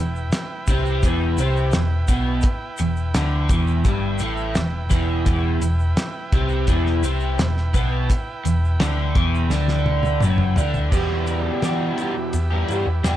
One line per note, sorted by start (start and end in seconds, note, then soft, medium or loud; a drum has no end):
0.00 0.29 E1 medium
0.00 0.26 E2 medium
0.00 10.90 E4 medium
0.00 10.90 B4 medium
0.00 10.89 G5 medium
0.16 shaker soft
0.32 snare loud
0.32 closed hi-hat medium
0.32 shaker medium
0.67 1.00 C2 medium
0.67 1.03 C3 medium
0.67 1.03 C4 loud
0.67 kick loud
0.67 closed hi-hat medium
0.67 shaker medium
0.86 shaker soft
1.03 1.36 E1 medium
1.03 1.38 E2 medium
1.03 1.38 E3 medium
1.03 kick loud
1.03 closed hi-hat medium
1.03 shaker medium
1.37 1.70 C2 medium
1.37 1.73 C3 loud
1.37 1.74 C4 medium
1.37 closed hi-hat medium
1.37 shaker medium
1.57 shaker soft
1.72 2.07 E1 medium
1.72 2.02 E2 medium
1.72 snare loud
1.72 closed hi-hat medium
1.72 shaker medium
2.08 2.42 B1 medium
2.08 2.43 B2 medium
2.08 2.44 B3 loud
2.08 kick medium
2.08 closed hi-hat medium
2.08 shaker medium
2.42 kick loud
2.42 closed hi-hat loud
2.42 shaker medium
2.77 3.13 E1 medium
2.77 3.08 E2 medium
2.77 closed hi-hat medium
2.77 shaker medium
2.97 shaker soft
3.14 3.48 D2 medium
3.14 3.49 D3 medium
3.14 3.50 D4 loud
3.14 snare loud
3.14 closed hi-hat loud
3.14 shaker medium
3.49 3.83 E1 medium
3.49 3.84 E2 medium
3.49 3.85 E3 medium
3.49 kick loud
3.49 closed hi-hat medium
3.49 shaker medium
3.67 shaker soft
3.85 4.18 G1 loud
3.85 4.20 G2 medium
3.85 4.20 G3 loud
3.85 kick loud
3.85 closed hi-hat medium
3.85 shaker medium
4.19 4.54 A1 medium
4.19 4.55 A2 loud
4.19 4.55 A3 loud
4.19 closed hi-hat medium
4.19 shaker medium
4.37 shaker soft
4.55 4.89 E1 medium
4.55 4.84 E2 medium
4.55 snare loud
4.55 closed hi-hat medium
4.55 shaker medium
4.90 5.24 E1 medium
4.90 5.24 E2 medium
4.90 5.25 E3 medium
4.90 kick loud
4.90 snare soft
4.90 closed hi-hat medium
4.90 shaker medium
5.25 5.60 E1 medium
5.25 5.61 E2 loud
5.25 5.61 E3 medium
5.25 kick loud
5.25 closed hi-hat medium
5.25 shaker medium
5.60 5.94 E1 medium
5.60 5.91 E2 medium
5.60 closed hi-hat medium
5.60 shaker medium
5.79 shaker soft
5.97 snare loud
5.97 closed hi-hat medium
5.97 shaker medium
6.32 6.66 C2 medium
6.32 6.68 C3 medium
6.32 6.68 C4 loud
6.32 kick loud
6.32 closed hi-hat medium
6.49 shaker soft
6.67 7.01 E1 medium
6.67 7.03 E2 medium
6.67 7.03 E3 loud
6.67 kick loud
6.67 closed hi-hat medium
6.67 shaker medium
6.86 snare soft
7.03 7.36 C2 medium
7.03 7.38 C3 medium
7.03 7.39 C4 loud
7.03 closed hi-hat medium
7.03 shaker medium
7.20 shaker soft
7.39 7.72 E1 medium
7.39 7.67 E2 medium
7.39 snare loud
7.39 closed hi-hat medium
7.39 shaker medium
7.57 snare soft
7.74 8.07 B1 loud
7.74 8.09 B2 medium
7.74 8.09 B3 medium
7.74 kick medium
7.74 closed hi-hat medium
7.74 shaker medium
8.10 kick loud
8.10 closed hi-hat loud
8.10 shaker medium
8.45 8.78 E1 medium
8.45 8.73 E2 medium
8.45 closed hi-hat medium
8.45 shaker medium
8.65 shaker soft
8.80 9.14 D2 medium
8.80 9.15 D3 medium
8.80 9.15 D4 medium
8.80 snare loud
8.80 closed hi-hat loud
8.80 shaker medium
9.15 9.48 E1 medium
9.15 9.50 E2 medium
9.15 9.50 E3 loud
9.15 kick loud
9.15 closed hi-hat medium
9.35 shaker soft
9.50 10.18 D2 medium
9.50 10.21 D3 medium
9.50 10.21 D4 medium
9.50 snare medium
9.50 shaker medium
9.68 snare medium
9.86 high tom medium
10.03 high tom medium
10.03 shaker soft
10.21 10.54 F#1 medium
10.21 10.57 F#2 medium
10.21 10.57 F#3 medium
10.21 mid tom medium
10.21 shaker medium
10.38 mid tom medium
10.56 10.90 D2 medium
10.56 10.92 D3 medium
10.56 10.92 D4 medium
10.56 floor tom medium
10.56 shaker medium
10.74 floor tom medium
10.74 shaker soft
10.91 11.60 E2 medium
10.91 11.48 E2 medium
10.91 11.61 B2 medium
10.91 11.62 E3 medium
10.91 11.63 G3 medium
10.91 11.63 B3 medium
10.91 13.17 E4 medium
10.91 13.17 G4 medium
10.91 11.64 G4 medium
10.91 13.17 B4 medium
10.91 kick loud
10.91 crash loud
10.91 shaker medium
11.27 ride medium
11.27 shaker medium
11.61 12.33 E2 medium
11.61 12.33 B2 medium
11.61 11.91 E3 medium
11.61 11.96 E3 medium
11.61 11.98 G3 medium
11.61 11.99 B3 medium
11.61 12.00 G4 medium
11.61 snare medium
11.61 ride medium
11.61 shaker medium
11.98 12.15 E3 medium
11.98 12.15 G3 medium
11.98 12.15 B3 medium
11.98 12.15 G4 medium
11.98 ride medium
11.98 shaker medium
12.16 muted overdriven electric guitar stroke soft
12.33 12.62 E2 medium
12.33 ride medium
12.33 shaker medium
12.51 12.68 E3 soft
12.51 12.69 G3 medium
12.51 12.70 B3 medium
12.51 12.71 G4 medium
12.68 12.83 G2 medium
12.68 12.87 E3 medium
12.68 12.87 G3 medium
12.68 12.87 B3 medium
12.68 12.86 G4 medium
12.68 ride medium
12.68 shaker medium
12.86 13.00 E2 medium
12.86 muted overdriven electric guitar stroke soft
13.03 13.17 E2 medium
13.03 13.17 B2 medium
13.03 13.17 E3 medium
13.03 13.17 G3 medium
13.03 13.17 B3 medium
13.03 13.17 G4 medium
13.03 snare loud
13.03 ride medium
13.03 shaker medium